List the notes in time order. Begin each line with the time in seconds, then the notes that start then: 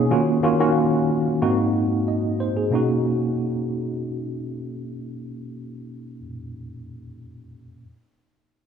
Already playing: B2 A#3 C#4 D#4 F#4 G#4
0.10 D#3 A#3 C#4 F4 F#4
0.43 D#3 A#3 C#4 F4 F#4
0.60 D#3 A#3 C#4 F4 F#4
1.41 G#2 A#3 C4 D#4 F#4
2.08 D#5
2.40 C5
2.57 G#4
2.70 B2 A#3 C#4 D#4
2.75 F#4